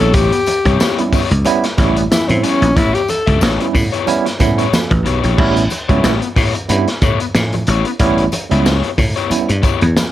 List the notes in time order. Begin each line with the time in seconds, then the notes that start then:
Already playing: G3 B3 C#4 E4
0.00 A#1 B3 E4 G4 A4 C#5
0.14 A1 B3 E4 G4 C#5, kick, closed hi-hat, tambourine, muted conga
0.32 muted overdriven electric guitar stroke, closed hi-hat
0.46 muted overdriven electric guitar stroke, closed hi-hat, tambourine, muted conga
0.65 C2 B3 E4 G4 C#5, kick, closed hi-hat
0.80 B3 C#4 E4 G4 C#5, snare, tambourine, high conga
0.98 G3 B3 C#4 E4, muted overdriven electric guitar stroke, closed hi-hat
1.13 B3 E4 G4 C#5, muted slap bass stroke, kick, open hi-hat, tambourine
1.31 C#2, muted overdriven electric guitar stroke, closed hi-hat
1.45 G3 B3 C#4 E4, muted overdriven electric guitar stroke, closed hi-hat, tambourine, muted conga
1.64 muted overdriven electric guitar stroke, snare, closed hi-hat
1.77 A1 G3 B3 C#4 E4 G4 C#5, kick, snare, closed hi-hat, tambourine, muted conga, low conga
1.97 muted overdriven electric guitar stroke, closed hi-hat
2.11 E4, snare, tambourine, high conga
2.28 A2 G3 B3 C4 C#4 E4, muted overdriven electric guitar stroke, closed hi-hat, high conga
2.43 B3 C#4 E4 G4 C#5, closed hi-hat, tambourine
2.62 A#1, muted overdriven electric guitar stroke, closed hi-hat
2.76 A1 B3 E4 G4 C#5, kick, closed hi-hat, muted conga
2.94 G4, closed hi-hat
3.08 A4, muted overdriven electric guitar stroke, closed hi-hat, tambourine, muted conga
3.26 C#2 B3 E4 G4 E5, kick, closed hi-hat
3.41 A1 B3 E4 G4 C#5, snare, tambourine, high conga
3.59 G3 B3 C#4 E4, closed hi-hat
3.74 A2, muted overdriven electric guitar stroke, kick, open hi-hat, tambourine, low conga
3.92 B3 E4 G4 C#5, closed hi-hat
4.06 G3 B3 C#4 E4, muted overdriven electric guitar stroke, closed hi-hat, tambourine, muted conga
4.26 muted overdriven electric guitar stroke, snare, closed hi-hat
4.39 A2 G3 B3 C#4 E4, kick, snare, closed hi-hat, tambourine, muted conga, low conga
4.58 B3 E4 G4 C#5, closed hi-hat
4.73 F#4 A4, muted overdriven electric guitar stroke, snare, tambourine, high conga
4.90 A1 G4 B4, muted overdriven electric guitar stroke, kick, closed hi-hat, high conga
5.05 B1 B3 E4 G4 C#5, closed hi-hat
5.22 A#1 B3 E4 G4 C#5, closed hi-hat
5.37 A1 G3 B3 C#4 E4 G4 C#5, kick, crash, muted conga
5.56 muted overdriven electric guitar stroke, closed hi-hat
5.70 muted overdriven electric guitar stroke, closed hi-hat, tambourine, muted conga
5.88 C#2 G3 B3 C#4 E4 G4 C#5, kick, closed hi-hat
6.04 A1 B3 E4 G4 C#5, snare, tambourine, high conga
6.22 muted overdriven electric guitar stroke, closed hi-hat
6.36 A2 B3 C#4 E4 G4 C#5, kick, open hi-hat, tambourine
6.55 muted overdriven electric guitar stroke, closed hi-hat
6.69 G2 G3 B3 C#4 E4, muted overdriven electric guitar stroke, closed hi-hat, tambourine, muted conga
6.88 muted overdriven electric guitar stroke, snare, closed hi-hat
7.01 A2 B3 C#4 E4 G4 C#5, kick, closed hi-hat, tambourine, muted conga, low conga
7.20 muted overdriven electric guitar stroke, closed hi-hat
7.35 A2, snare, tambourine, high conga
7.53 muted overdriven electric guitar stroke, closed hi-hat, high conga
7.67 A1 B3 E4 G4 C#5, closed hi-hat, tambourine
7.85 C#4 E4, muted overdriven electric guitar stroke, closed hi-hat
7.99 A1 G3 B3 C#4 E4 G4 C#5, kick, closed hi-hat, muted conga
8.18 closed hi-hat
8.32 muted overdriven electric guitar stroke, closed hi-hat, tambourine, muted conga
8.50 C#2 G3 B3 C#4 E4 G4 E5, closed hi-hat
8.65 C#2 B3 E4 G4 C#5, snare, tambourine, high conga
8.84 closed hi-hat
8.97 A2 C#4 F#4, muted overdriven electric guitar stroke, kick, open hi-hat, tambourine, low conga
9.16 B3 E4 G4 C#5, closed hi-hat
9.29 G3 B3 C#4 E4, muted slap bass stroke, closed hi-hat, tambourine, muted conga
9.49 G2, muted overdriven electric guitar stroke, closed hi-hat
9.62 B3 C#4 E4 G4 C#5, kick, closed hi-hat, tambourine, muted conga
9.81 E2, muted overdriven electric guitar stroke, closed hi-hat
9.97 muted overdriven electric guitar stroke, snare, tambourine, high conga